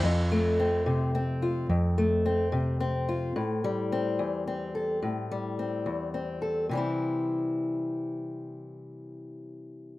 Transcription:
<<
  \new Staff \with { instrumentName = "Steel-string acoustic guitar" } { \time 6/8 \key c \major \tempo 4. = 72 << { r8 a8 c'4 c'8 f'8 | r8 a8 c'4 c'8 f'8 | r8 g8 c'4 c'8 a'8 | r8 g8 c'4 c'8 a'8 |
<e g c' e'>2.~ | <e g c' e'>2. | } \\ { f,4. c4. | f,4. c4. | a,4. e,4. | a,4. e,4. |
c2.~ | c2. | } >> }
  \new Staff \with { instrumentName = "Picked electric bass" } { \clef bass \time 6/8 \key c \major f,2. | f,2. | r2. | r2. |
r2. | r2. | }
>>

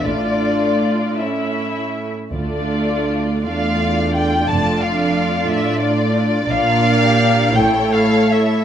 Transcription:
<<
  \new Staff \with { instrumentName = "Violin section" } { \time 6/8 \key d \minor \tempo 4. = 55 d''4. r4. | r4. f''4 g''8 | a''8 f''4 e''8 d''4 | f''4. g''8 f''8 e''8 | }
  \new Staff \with { instrumentName = "Violin section" } { \time 6/8 \key d \minor << { d''4. e''4 r8 | d''4. d''4. | d''2. | d''4. cis''4. | } \\ { f'4. e'4~ e'16 r16 | f'4. f'4. | f'2. | f'8. g'8. a'4. | } >> }
  \new Staff \with { instrumentName = "Viola section" } { \time 6/8 \key d \minor <a d'>4. <a cis'>4 r8 | <a d'>4. <a d'>4. | <a d'>2. | <bes d'>4. <a e'>4. | }
  \new Staff \with { instrumentName = "Cello section" } { \clef bass \time 6/8 \key d \minor a,2~ a,8 r8 | d,4. e,4. | f,4. a,4. | bes,4. a,4. | }
  \new Staff \with { instrumentName = "Double bass section" } { \clef bass \time 6/8 \key d \minor a,,4 r2 | d,4 r2 | f,,4 r2 | bes,,4 r8 a,,4 r8 | }
>>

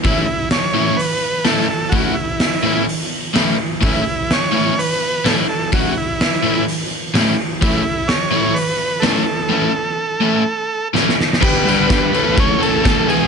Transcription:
<<
  \new Staff \with { instrumentName = "Transistor combo organ" } { \time 4/4 \key a \mixolydian \tempo 4 = 127 e'4 cis''4 b'4 a'8 a'8 | fis'8 e'4. r2 | e'4 cis''4 b'4 a'8 a'8 | fis'8 e'4. r2 |
e'4 cis''4 b'4 a'8 a'8~ | a'2. r4 | b'2 cis''8 a'4 gis'8 | }
  \new Staff \with { instrumentName = "Overdriven electric guitar" } { \time 4/4 \key a \mixolydian <a, e a cis' e'>8 r4 <a, e a cis' e'>8 r4 <a, e a cis' e'>8 r8 | <a, e a cis' e'>8 r4 <a, e a cis' e'>8 r4 <a, e a cis' e'>8 r8 | <a, e a cis' e'>8 r4 <a, e a cis' e'>8 r4 <a, e a cis' e'>8 r8 | <a, e a cis' e'>8 r4 <a, e a cis' e'>8 r4 <a, e a cis' e'>8 r8 |
<a, e a cis' e'>8 r4 <a, e a cis' e'>8 r4 <a, e a cis' e'>8 r8 | <a, e a cis' e'>8 r4 <a, e a cis' e'>8 r4 <a, e a cis' e'>8 r8 | <g, d g b d' g'>8 <g, d g b d' g'>8 <g, d g b d' g'>8 <a, e a cis' a'>8 <a, e a cis' a'>8 <a, e a cis' a'>8 <a, e a cis' a'>8 <e, b, e gis b gis'>8 | }
  \new DrumStaff \with { instrumentName = "Drums" } \drummode { \time 4/4 <hho bd>4 <hho sn>4 hho4 <hho sn>4 | <hho bd>4 <hho sn>4 hho4 <hho sn>4 | <hho bd>4 <hho sn>4 hho4 <hho sn>4 | <hho bd>4 <hho sn>4 hho4 <hho sn>4 |
<hho bd>4 <hho sn>4 hho4 <hho sn>4 | r4 r4 r4 sn16 sn16 sn16 sn16 | <cymc bd>8 cymr8 <bd cymr sn>8 cymr8 <bd cymr>8 cymr8 <bd cymr sn>8 cymr8 | }
>>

